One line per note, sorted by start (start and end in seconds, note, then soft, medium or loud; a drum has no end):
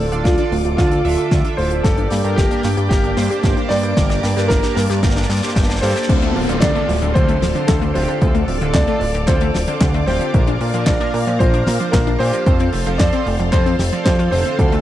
0.00 0.10 D1 medium
0.00 1.82 F4 medium
0.00 0.21 A4 medium
0.00 1.82 A4 medium
0.00 6.05 D5 medium
0.00 1.82 D6 medium
0.12 0.24 D1 medium
0.12 0.35 D3 medium
0.12 0.35 D4 medium
0.12 0.35 F4 medium
0.12 0.25 F4 medium
0.12 0.35 A4 medium
0.12 0.35 D5 loud
0.12 closed hi-hat medium
0.24 0.37 D2 medium
0.24 0.38 D3 medium
0.24 0.75 F4 medium
0.24 kick loud
0.24 snare medium
0.24 closed hi-hat medium
0.38 0.52 D3 loud
0.38 0.52 D4 medium
0.38 0.50 D4 medium
0.38 0.52 F4 medium
0.38 0.52 A4 medium
0.38 0.52 D5 loud
0.38 closed hi-hat medium
0.52 0.63 D1 medium
0.52 0.63 A3 medium
0.52 open hi-hat loud
0.65 0.77 D1 loud
0.65 0.78 F4 medium
0.65 closed hi-hat medium
0.77 1.02 D2 medium
0.77 1.02 D3 medium
0.77 0.91 D3 medium
0.77 1.02 D4 medium
0.77 1.60 F4 medium
0.77 1.02 F4 medium
0.77 1.02 A4 medium
0.77 1.02 D5 medium
0.77 kick loud
0.77 snare medium
0.77 closed hi-hat medium
0.91 1.03 D4 medium
0.91 closed hi-hat medium
1.05 1.17 D1 medium
1.05 1.41 D3 medium
1.05 1.16 A3 medium
1.05 1.41 D4 medium
1.05 1.41 F4 medium
1.05 1.41 A4 medium
1.05 1.41 E5 loud
1.05 open hi-hat loud
1.18 1.31 F4 medium
1.18 closed hi-hat medium
1.31 1.43 D2 medium
1.31 1.44 D3 medium
1.31 kick loud
1.31 snare medium
1.31 closed hi-hat medium
1.44 1.81 D3 medium
1.44 1.81 D4 medium
1.44 1.56 D4 medium
1.44 1.81 F4 medium
1.44 1.81 A4 medium
1.44 1.81 E5 medium
1.44 closed hi-hat medium
1.57 1.81 D1 medium
1.57 1.69 A3 medium
1.57 1.85 C5 medium
1.57 open hi-hat loud
1.71 1.84 F4 medium
1.71 closed hi-hat medium
1.83 2.08 G1 loud
1.83 2.21 G2 medium
1.83 1.97 D3 medium
1.83 6.05 A#3 medium
1.83 2.21 A#3 medium
1.83 2.21 D4 medium
1.83 2.21 G4 medium
1.83 2.39 A4 medium
1.83 2.21 D5 medium
1.83 3.95 G5 medium
1.83 6.05 D6 medium
1.83 kick loud
1.83 snare medium
1.83 closed hi-hat medium
1.97 2.09 D4 medium
1.97 closed hi-hat medium
2.10 2.23 G2 medium
2.10 2.22 A#3 medium
2.10 snare medium
2.10 open hi-hat loud
2.24 2.48 G2 medium
2.24 2.36 G2 medium
2.24 2.48 A#3 medium
2.24 2.48 D4 medium
2.24 2.48 G4 medium
2.24 2.37 G4 medium
2.24 2.48 A#4 loud
2.24 closed hi-hat soft
2.36 2.49 G1 medium
2.36 2.50 D3 medium
2.36 2.88 G4 loud
2.36 kick loud
2.36 snare medium
2.36 closed hi-hat medium
2.51 2.64 G2 loud
2.51 2.64 A#3 medium
2.51 2.64 D4 medium
2.51 2.62 D4 medium
2.51 2.64 G4 medium
2.51 2.64 A#4 loud
2.51 closed hi-hat medium
2.63 2.76 G2 loud
2.63 2.75 A#3 medium
2.63 snare medium
2.63 open hi-hat loud
2.77 2.89 G2 loud
2.77 2.90 G4 medium
2.77 closed hi-hat medium
2.89 3.14 G1 medium
2.89 3.14 G2 medium
2.89 3.03 D3 medium
2.89 3.14 A#3 medium
2.89 3.14 D4 medium
2.89 3.72 G4 loud
2.89 3.14 G4 medium
2.89 3.14 A#4 medium
2.89 kick loud
2.89 snare medium
2.89 closed hi-hat medium
3.04 3.15 D4 medium
3.04 closed hi-hat medium
3.17 3.54 G2 medium
3.17 3.29 G2 medium
3.17 3.28 A#3 medium
3.17 3.54 A#3 medium
3.17 3.54 D4 medium
3.17 3.54 G4 medium
3.17 3.54 C5 loud
3.17 snare medium
3.17 open hi-hat loud
3.30 3.43 G4 medium
3.30 closed hi-hat medium
3.43 3.55 G1 medium
3.43 3.56 D3 medium
3.43 kick loud
3.43 snare medium
3.43 closed hi-hat medium
3.57 3.94 G2 medium
3.57 3.94 A#3 medium
3.57 3.68 D4 medium
3.57 3.94 D4 medium
3.57 3.94 G4 medium
3.57 3.94 C5 medium
3.57 closed hi-hat medium
3.69 3.94 G2 medium
3.69 3.81 A#3 medium
3.69 4.52 D5 loud
3.69 snare medium
3.69 open hi-hat loud
3.83 3.96 G4 medium
3.83 closed hi-hat medium
3.96 4.20 G1 loud
3.96 4.34 G2 medium
3.96 4.09 D3 medium
3.96 4.33 A#3 medium
3.96 4.34 D4 medium
3.96 4.34 G4 medium
3.96 4.34 A#4 medium
3.96 6.07 A5 medium
3.96 kick loud
3.96 snare loud
3.96 closed hi-hat medium
4.10 4.21 D4 medium
4.10 snare medium
4.10 closed hi-hat medium
4.23 4.35 G2 medium
4.23 4.34 A#3 medium
4.23 snare medium
4.23 open hi-hat loud
4.36 4.60 G2 medium
4.36 4.48 G2 medium
4.36 4.60 A#3 medium
4.36 4.60 D4 medium
4.36 4.49 G4 medium
4.36 4.60 G4 medium
4.36 4.60 A#4 loud
4.36 snare medium
4.36 closed hi-hat medium
4.48 4.62 G1 medium
4.48 4.62 D3 medium
4.48 4.73 A#4 loud
4.48 kick loud
4.48 snare loud
4.48 closed hi-hat medium
4.63 4.77 G2 loud
4.63 4.77 A#3 medium
4.63 4.74 D4 medium
4.63 4.77 D4 medium
4.63 4.77 G4 medium
4.63 4.77 A#4 loud
4.63 snare medium
4.63 closed hi-hat medium
4.75 4.88 G2 loud
4.75 4.88 A#3 medium
4.75 5.51 A#4 loud
4.75 snare loud
4.75 open hi-hat loud
4.90 5.01 G2 loud
4.90 5.02 G4 medium
4.90 snare medium
4.90 closed hi-hat medium
5.03 5.26 G1 medium
5.03 5.26 G2 medium
5.03 5.16 D3 medium
5.03 5.26 A#3 medium
5.03 5.26 D4 medium
5.03 5.26 G4 medium
5.03 5.26 A#4 medium
5.03 kick loud
5.03 snare loud
5.03 closed hi-hat medium
5.10 snare loud
5.16 5.27 D4 medium
5.16 snare medium
5.16 closed hi-hat soft
5.22 snare medium
5.29 5.41 G2 medium
5.29 5.41 A#3 medium
5.29 snare loud
5.29 open hi-hat loud
5.36 snare medium
5.43 5.80 G2 medium
5.43 5.80 A#3 medium
5.43 5.80 D4 medium
5.43 5.80 G4 medium
5.43 5.56 G4 medium
5.43 5.80 C5 medium
5.43 snare loud
5.43 closed hi-hat medium
5.48 snare loud
5.56 5.79 G1 medium
5.56 5.69 D3 medium
5.56 kick loud
5.56 snare loud
5.56 closed hi-hat medium
5.63 snare loud
5.69 5.80 D4 medium
5.69 snare medium
5.69 closed hi-hat soft
5.76 snare loud
5.81 5.94 G2 medium
5.81 6.06 A#3 loud
5.81 5.94 A#3 medium
5.81 6.06 D4 medium
5.81 6.06 G4 medium
5.81 6.06 A4 loud
5.81 6.64 C5 loud
5.81 snare loud
5.81 open hi-hat loud
5.89 snare medium
5.96 6.09 G4 medium
5.96 snare medium
5.96 closed hi-hat medium
6.03 snare loud
6.09 6.33 D2 loud
6.09 6.20 C3 medium
6.09 6.46 D3 medium
6.09 6.46 C4 medium
6.09 6.46 D4 medium
6.09 6.46 F4 medium
6.09 6.46 A4 medium
6.09 10.30 A4 medium
6.09 12.43 D5 medium
6.09 14.81 F5 medium
6.09 8.20 C6 medium
6.09 kick loud
6.09 closed hi-hat medium
6.09 crash loud
6.09 downlifter medium
6.22 6.29 A3 loud
6.22 closed hi-hat soft
6.36 6.47 D1 medium
6.36 6.48 F3 medium
6.36 open hi-hat loud
6.49 6.61 D1 medium
6.49 6.60 D3 loud
6.49 6.72 D3 medium
6.49 6.72 C4 medium
6.49 6.72 D4 medium
6.49 6.72 F4 medium
6.49 6.72 A4 loud
6.49 closed hi-hat medium
6.60 6.74 D2 medium
6.60 6.73 C3 medium
6.60 7.16 D5 loud
6.60 kick loud
6.60 snare loud
6.60 clap medium
6.60 closed hi-hat medium
6.75 6.89 D3 loud
6.75 6.82 A3 loud
6.75 6.89 C4 medium
6.75 6.89 D4 medium
6.75 6.89 F4 medium
6.75 6.89 A4 loud
6.75 closed hi-hat soft
6.89 7.01 D1 loud
6.89 7.01 F3 medium
6.89 open hi-hat loud
7.02 7.14 D1 loud
7.02 7.13 D3 loud
7.02 closed hi-hat medium
7.14 7.39 D2 medium
7.14 7.26 C3 medium
7.14 7.39 D3 medium
7.14 7.39 C4 medium
7.14 7.39 D4 medium
7.14 7.39 F4 medium
7.14 7.39 A4 medium
7.14 7.69 C5 loud
7.14 kick loud
7.14 closed hi-hat medium
7.28 7.35 A3 loud
7.28 closed hi-hat soft
7.42 7.54 D1 medium
7.42 7.55 F3 medium
7.42 snare medium
7.42 open hi-hat loud
7.55 7.66 D3 loud
7.55 7.92 D3 medium
7.55 7.92 C4 medium
7.55 7.92 D4 medium
7.55 7.92 F4 medium
7.55 7.92 C5 medium
7.55 closed hi-hat medium
7.67 7.92 D2 medium
7.67 7.80 C3 medium
7.67 7.95 A4 medium
7.67 kick loud
7.67 snare loud
7.67 clap loud
7.67 closed hi-hat medium
7.82 7.88 A3 loud
7.82 closed hi-hat soft
7.94 8.07 D1 loud
7.94 8.19 D3 medium
7.94 8.08 F3 medium
7.94 8.19 C4 loud
7.94 8.19 D4 medium
7.94 8.19 F4 medium
7.94 8.19 G4 loud
7.94 8.44 C5 medium
7.94 open hi-hat loud
8.08 8.19 D3 loud
8.08 closed hi-hat medium
8.21 8.45 D2 loud
8.21 8.33 C3 medium
8.21 8.58 D3 medium
8.21 8.58 C4 medium
8.21 8.58 D4 medium
8.21 8.58 F4 medium
8.21 8.58 A4 medium
8.21 12.43 D6 medium
8.21 kick loud
8.21 closed hi-hat medium
8.35 8.41 A3 loud
8.35 closed hi-hat soft
8.48 8.60 D1 medium
8.48 8.61 F3 medium
8.48 open hi-hat loud
8.61 8.73 D1 medium
8.61 8.72 D3 loud
8.61 8.85 D3 medium
8.61 8.85 C4 medium
8.61 8.85 D4 medium
8.61 8.85 F4 medium
8.61 8.85 A4 loud
8.61 closed hi-hat medium
8.73 8.86 D2 medium
8.73 8.86 C3 medium
8.73 8.98 D5 loud
8.73 kick loud
8.73 snare loud
8.73 clap medium
8.73 closed hi-hat medium
8.88 9.01 D3 loud
8.88 8.95 A3 loud
8.88 9.01 C4 medium
8.88 9.01 D4 medium
8.88 9.01 F4 medium
8.88 9.01 A4 loud
8.88 closed hi-hat soft
9.00 9.13 D1 loud
9.00 9.14 F3 medium
9.00 9.28 D5 loud
9.00 open hi-hat loud
9.14 9.26 D1 loud
9.14 9.26 D3 loud
9.14 closed hi-hat medium
9.27 9.51 D2 medium
9.27 9.39 C3 medium
9.27 9.51 D3 medium
9.27 9.51 C4 medium
9.27 9.51 D4 medium
9.27 9.51 F4 medium
9.27 9.51 A4 medium
9.27 9.77 C5 medium
9.27 kick loud
9.27 clap medium
9.27 closed hi-hat medium
9.41 9.48 A3 loud
9.41 closed hi-hat soft
9.54 9.66 D1 medium
9.54 9.67 F3 medium
9.54 snare medium
9.54 open hi-hat loud
9.67 9.79 D3 loud
9.67 10.04 D3 medium
9.67 10.04 C4 medium
9.67 10.04 D4 medium
9.67 10.04 F4 medium
9.67 10.04 C5 medium
9.67 closed hi-hat medium
9.81 10.04 D2 medium
9.81 9.92 C3 medium
9.81 kick loud
9.81 snare loud
9.81 clap medium
9.81 closed hi-hat medium
9.94 10.01 A3 loud
9.94 closed hi-hat soft
10.06 10.19 D1 loud
10.06 10.20 F3 medium
10.06 10.31 C4 loud
10.06 10.31 D4 medium
10.06 10.31 F4 medium
10.06 10.31 G4 loud
10.06 10.89 C5 medium
10.06 open hi-hat loud
10.21 10.32 D3 medium
10.21 closed hi-hat medium
10.34 10.57 A#1 loud
10.34 10.71 A#2 medium
10.34 10.45 D3 medium
10.34 10.71 A#3 medium
10.34 10.71 D4 medium
10.34 10.71 F4 medium
10.34 10.71 A#4 medium
10.34 12.45 A#4 medium
10.34 kick loud
10.34 closed hi-hat medium
10.47 10.54 D4 loud
10.47 closed hi-hat soft
10.61 10.72 A#2 medium
10.61 10.73 A#3 medium
10.61 open hi-hat loud
10.74 10.97 A#2 medium
10.74 10.86 A#2 medium
10.74 10.85 F3 loud
10.74 10.97 A#3 medium
10.74 10.97 D4 medium
10.74 10.97 F4 medium
10.74 10.97 A#4 loud
10.74 closed hi-hat medium
10.86 10.99 A#1 medium
10.86 10.98 D3 medium
10.86 11.41 D5 loud
10.86 kick loud
10.86 snare loud
10.86 clap loud
10.86 closed hi-hat medium
11.00 11.14 A#2 loud
11.00 11.14 A#3 medium
11.00 11.14 D4 medium
11.00 11.07 D4 loud
11.00 11.14 F4 medium
11.00 11.14 A#4 loud
11.00 closed hi-hat soft
11.14 11.25 A#2 loud
11.14 11.26 A#3 medium
11.14 open hi-hat loud
11.27 11.39 A#2 loud
11.27 11.38 F3 loud
11.27 closed hi-hat medium
11.39 11.64 A#1 medium
11.39 11.64 A#2 medium
11.39 11.52 D3 medium
11.39 11.64 A#3 medium
11.39 11.64 D4 medium
11.39 11.64 F4 medium
11.39 11.64 A#4 medium
11.39 11.94 C5 loud
11.39 kick loud
11.39 closed hi-hat medium
11.54 11.60 D4 loud
11.54 closed hi-hat soft
11.66 11.79 A#2 medium
11.66 11.80 A#3 medium
11.66 snare medium
11.66 open hi-hat loud
11.80 12.17 A#2 medium
11.80 11.91 F3 loud
11.80 12.17 A#3 medium
11.80 12.17 D4 medium
11.80 12.17 F4 medium
11.80 12.17 C5 medium
11.80 closed hi-hat medium
11.92 12.17 A#1 medium
11.92 12.05 D3 medium
11.92 12.20 A#4 medium
11.92 kick loud
11.92 snare loud
11.92 clap medium
11.92 closed hi-hat medium
12.07 12.13 D4 loud
12.07 closed hi-hat soft
12.19 12.32 A#2 loud
12.19 12.43 A#3 loud
12.19 12.33 A#3 medium
12.19 12.43 D4 medium
12.19 12.43 F4 medium
12.19 12.43 G4 loud
12.19 13.01 C5 loud
12.19 open hi-hat loud
12.33 12.44 F3 loud
12.33 closed hi-hat medium
12.46 12.70 F2 loud
12.46 12.58 C3 medium
12.46 12.83 F3 medium
12.46 12.83 C4 medium
12.46 12.83 F4 medium
12.46 12.83 A4 medium
12.46 14.81 A4 medium
12.46 12.83 C5 medium
12.46 14.57 C5 medium
12.46 14.81 C6 medium
12.46 kick loud
12.46 closed hi-hat medium
12.60 12.67 C4 loud
12.60 closed hi-hat soft
12.73 12.85 F1 medium
12.73 12.86 A3 medium
12.73 open hi-hat loud
12.86 12.98 F1 medium
12.86 13.10 F3 medium
12.86 12.97 F3 loud
12.86 13.10 C4 medium
12.86 13.10 F4 medium
12.86 13.10 A4 medium
12.86 13.10 C5 loud
12.86 closed hi-hat medium
12.98 13.11 F2 medium
12.98 13.11 C3 medium
12.98 13.54 D5 loud
12.98 kick loud
12.98 snare loud
12.98 clap medium
12.98 closed hi-hat medium
13.13 13.26 F3 loud
13.13 13.20 C4 loud
13.13 13.26 C4 medium
13.13 13.26 F4 medium
13.13 13.26 A4 medium
13.13 13.26 C5 loud
13.13 closed hi-hat medium
13.26 13.38 F1 loud
13.26 13.39 A3 medium
13.26 open hi-hat loud
13.39 13.51 F1 loud
13.39 13.51 F3 loud
13.39 closed hi-hat medium
13.51 13.76 F2 medium
13.51 13.64 C3 medium
13.51 13.76 F3 medium
13.51 13.76 C4 medium
13.51 13.76 F4 medium
13.51 13.76 A4 medium
13.51 14.03 C5 loud
13.51 13.76 C5 medium
13.51 kick loud
13.51 clap medium
13.51 closed hi-hat medium
13.66 13.73 C4 loud
13.66 closed hi-hat soft
13.79 13.91 F1 medium
13.79 13.90 C3 medium
13.79 snare medium
13.79 open hi-hat loud
13.92 14.29 F3 medium
13.92 14.04 F3 loud
13.92 14.29 C4 medium
13.92 14.29 F4 medium
13.92 14.29 A4 medium
13.92 14.29 D5 medium
13.92 closed hi-hat medium
14.04 14.29 F2 medium
14.04 14.12 C3 loud
14.04 14.29 C5 medium
14.04 kick loud
14.04 snare loud
14.04 clap medium
14.04 closed hi-hat medium
14.19 14.30 F4 loud
14.19 closed hi-hat soft
14.31 14.44 F1 loud
14.31 14.43 C3 medium
14.31 14.56 D3 loud
14.31 14.56 C4 medium
14.31 14.56 F4 medium
14.31 14.56 A4 medium
14.31 14.81 C5 medium
14.31 14.56 C5 loud
14.31 open hi-hat loud
14.45 14.52 A3 medium
14.45 closed hi-hat medium
14.59 14.81 D2 loud
14.59 14.70 C3 medium
14.59 14.81 D3 medium
14.59 14.81 C4 medium
14.59 14.81 D4 medium
14.59 14.81 F4 medium
14.59 14.81 A4 medium
14.59 14.81 D5 medium
14.59 kick loud
14.59 closed hi-hat medium
14.72 14.79 A3 loud
14.72 closed hi-hat soft